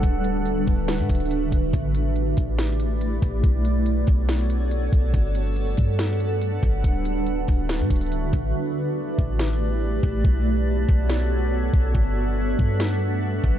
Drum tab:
HH |x---x---x---o---x---xxxxx---x---|x---x---x---x---x---x---x---x---|x---x---x---x---x---x---x---x---|x---x---x---x---x---x---x---x---|
SD |----------------o---------------|----------------o---------------|----------------o---------------|----------------o---------------|
BD |o-----------o-------o-------o---|o-----------o---------------o---|o-----------o---------------o---|o-----------o---------------o---|

HH |x---x---x---o---x---xxxxx---x---|--------------------------------|--------------------------------|--------------------------------|
SD |----------------o---------------|----------------o---------------|----------------o---------------|----------------o---------------|
BD |o-----------o-------o-------o---|------------o---------------o---|o-----------o---------------o---|o-----------o---------------o---|